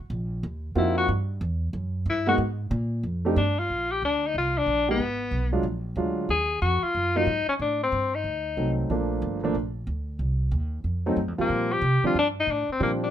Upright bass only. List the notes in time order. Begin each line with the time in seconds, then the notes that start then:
0.10 A#1
0.43 D#2
0.75 F2
1.08 G2
1.41 E2
1.73 F#2
2.06 G2
2.38 G#2
2.71 A#2
3.03 F2
3.36 G2
3.70 A#1
4.02 D2
4.34 C2
4.66 A#1
4.99 G#1
5.31 B1
5.63 A#1
5.96 D2
6.29 D#2
6.62 F2
6.83 muted upright bass stroke
6.94 F#2
7.26 G#2
7.48 muted upright bass stroke
7.59 A2
7.92 G2
8.24 D2
8.57 C2
8.90 A#1
9.22 G1
9.54 A#1
9.87 D2
10.19 C2
10.51 D#2
10.84 F2
11.16 F#2
11.28 F2
11.38 D#2
11.49 A#2
11.81 C3
12.03 muted upright bass stroke
12.15 G2
12.47 A2
12.69 muted upright bass stroke
12.80 A#2